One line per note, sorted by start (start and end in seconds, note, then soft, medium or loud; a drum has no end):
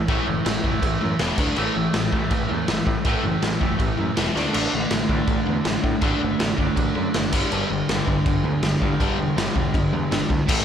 0.08 0.20 A1 medium
0.08 0.26 A2 medium
0.08 0.26 E3 loud
0.08 0.27 A3 loud
0.08 kick loud
0.08 crash medium
0.27 0.39 F#1 medium
0.27 0.44 A2 medium
0.27 0.44 E3 medium
0.45 0.58 A1 medium
0.45 0.62 A2 medium
0.45 0.62 E3 medium
0.45 snare loud
0.45 crash medium
0.64 0.75 F#1 medium
0.64 0.81 A2 medium
0.64 0.81 E3 medium
0.64 1.19 A3 medium
0.64 kick medium
0.82 0.94 A1 medium
0.82 1.00 A2 medium
0.82 1.00 E3 medium
0.82 kick loud
0.82 crash medium
1.01 1.14 F#2 medium
1.01 1.18 A2 medium
1.01 1.18 E3 medium
1.19 1.31 E1 medium
1.19 1.37 E2 medium
1.19 1.38 B2 medium
1.19 1.38 E3 loud
1.19 snare loud
1.19 crash medium
1.38 1.49 D2 medium
1.38 1.56 D3 medium
1.38 1.56 A3 medium
1.38 1.57 D4 medium
1.38 kick loud
1.38 crash medium
1.56 1.68 A1 medium
1.56 1.74 A2 medium
1.56 1.74 E3 loud
1.56 1.75 A3 loud
1.56 crash medium
1.75 1.87 A1 medium
1.75 1.92 A2 medium
1.75 1.92 E3 medium
1.93 2.06 A1 medium
1.93 2.11 A2 medium
1.93 2.11 E3 medium
1.93 snare loud
1.93 crash medium
2.12 2.24 A1 medium
2.12 2.29 A2 medium
2.12 2.30 E3 medium
2.12 3.05 A3 medium
2.12 kick medium
2.31 2.43 A1 medium
2.31 2.48 A2 medium
2.31 2.48 E3 medium
2.31 kick medium
2.31 crash medium
2.49 2.62 E2 medium
2.49 2.66 A2 medium
2.49 2.67 E3 medium
2.68 2.79 A1 medium
2.68 2.85 A2 medium
2.68 2.85 E3 medium
2.68 snare loud
2.68 crash medium
2.87 2.98 A2 medium
2.87 3.04 A2 medium
2.87 3.04 E3 medium
2.87 kick medium
3.05 3.17 A1 medium
3.05 3.23 A2 medium
3.05 3.23 E3 loud
3.05 3.24 A3 medium
3.05 kick loud
3.05 crash medium
3.23 3.35 F#1 medium
3.23 3.41 A2 medium
3.23 3.41 E3 medium
3.42 3.54 A1 medium
3.42 3.59 A2 medium
3.42 3.59 E3 medium
3.42 snare loud
3.42 crash medium
3.61 3.73 F#1 loud
3.61 3.77 A2 medium
3.61 3.78 E3 medium
3.61 4.16 A3 medium
3.61 kick medium
3.79 3.91 A1 medium
3.79 3.96 A2 medium
3.79 3.96 E3 medium
3.79 kick loud
3.79 crash medium
3.97 4.10 F#2 medium
3.97 4.15 A2 medium
3.97 4.15 E3 medium
4.16 4.28 E1 medium
4.16 4.34 E2 medium
4.16 4.34 B2 medium
4.16 4.35 E3 medium
4.16 snare loud
4.16 crash medium
4.35 4.47 D2 medium
4.35 4.51 D3 medium
4.35 4.52 A3 medium
4.35 4.53 D4 medium
4.35 snare medium
4.53 4.66 A1 medium
4.53 4.70 D3 medium
4.53 4.71 A3 loud
4.53 4.72 D4 medium
4.53 crash loud
4.53 crash medium
4.72 4.85 A1 medium
4.72 4.89 D3 medium
4.72 4.89 A3 medium
4.91 5.03 A1 medium
4.91 5.08 D3 medium
4.91 5.08 A3 medium
4.91 snare loud
4.91 crash medium
5.09 5.21 A1 medium
5.09 5.26 D3 medium
5.09 5.26 A3 medium
5.09 6.03 D4 medium
5.09 kick medium
5.27 5.39 A1 medium
5.27 5.45 D3 medium
5.27 5.45 A3 medium
5.27 kick loud
5.27 crash medium
5.46 5.59 E2 medium
5.46 5.63 D3 medium
5.46 5.64 A3 medium
5.64 5.77 A1 medium
5.64 5.82 D3 medium
5.64 5.82 A3 medium
5.64 snare loud
5.64 crash medium
5.84 5.95 A2 medium
5.84 6.00 D3 medium
5.84 6.01 A3 medium
5.84 kick medium
6.01 6.14 A1 medium
6.01 6.19 D3 medium
6.01 6.19 A3 loud
6.01 6.20 D4 medium
6.01 kick loud
6.01 crash medium
6.20 6.34 F#1 medium
6.20 6.37 D3 medium
6.20 6.38 A3 medium
6.39 6.52 A1 medium
6.39 6.56 D3 medium
6.39 6.57 A3 medium
6.39 snare loud
6.39 crash medium
6.58 6.70 F#1 medium
6.58 6.75 D3 medium
6.58 6.75 A3 medium
6.58 10.08 D4 medium
6.58 kick medium
6.76 6.89 A1 medium
6.76 6.93 D3 medium
6.76 6.94 A3 medium
6.76 kick loud
6.76 crash medium
6.95 7.08 F#2 medium
6.95 7.12 D3 medium
6.95 7.12 A3 medium
7.14 7.33 F#1 medium
7.14 7.31 D3 medium
7.14 7.31 A3 medium
7.14 snare loud
7.14 crash medium
7.32 7.44 G1 medium
7.32 7.50 G2 medium
7.32 7.50 D3 medium
7.32 7.51 G3 medium
7.32 kick loud
7.32 crash loud
7.52 7.63 G1 medium
7.52 7.69 G2 medium
7.52 7.69 D3 medium
7.52 7.70 G3 loud
7.52 crash medium
7.70 7.82 G1 medium
7.70 7.87 G2 medium
7.70 7.87 D3 medium
7.89 8.00 G1 medium
7.89 8.06 G2 medium
7.89 8.06 D3 medium
7.89 8.81 G3 medium
7.89 snare loud
7.89 crash medium
8.08 8.19 G1 medium
8.08 8.24 G2 medium
8.08 8.24 D3 medium
8.08 kick medium
8.26 8.37 G1 medium
8.26 8.43 G2 medium
8.26 8.43 D3 medium
8.26 kick loud
8.26 crash medium
8.44 8.55 D2 medium
8.44 8.61 G2 medium
8.44 8.61 D3 medium
8.63 8.74 G1 medium
8.63 8.79 G2 medium
8.63 8.80 D3 medium
8.63 snare loud
8.63 crash medium
8.82 8.98 G2 medium
8.82 8.93 G2 medium
8.82 8.98 D3 medium
8.82 9.36 G3 loud
8.82 kick medium
9.00 9.12 G1 medium
9.00 9.17 G2 medium
9.00 9.18 D3 loud
9.00 9.18 G3 loud
9.00 kick loud
9.00 crash medium
9.19 9.30 E1 medium
9.19 9.35 G2 medium
9.19 9.35 D3 medium
9.37 9.48 G1 medium
9.37 9.54 G2 medium
9.37 9.54 D3 medium
9.37 10.29 G3 medium
9.37 snare loud
9.37 crash medium
9.55 9.67 E1 medium
9.55 9.72 G2 medium
9.55 9.72 D3 medium
9.55 kick medium
9.74 9.85 G1 medium
9.74 9.91 G2 medium
9.74 9.91 D3 medium
9.74 kick loud
9.74 crash soft
9.93 10.04 E2 medium
9.93 10.09 G2 medium
9.93 10.10 D3 medium
10.11 10.23 G1 medium
10.11 10.28 G2 medium
10.11 10.28 D3 medium
10.11 snare loud
10.11 crash medium
10.30 10.41 D2 medium
10.30 10.46 G2 medium
10.30 10.47 D3 medium
10.30 kick medium
10.48 10.65 A1 medium
10.48 10.65 A2 loud
10.48 10.65 E3 loud
10.48 10.65 A3 medium
10.48 kick loud
10.48 crash loud
10.48 crash medium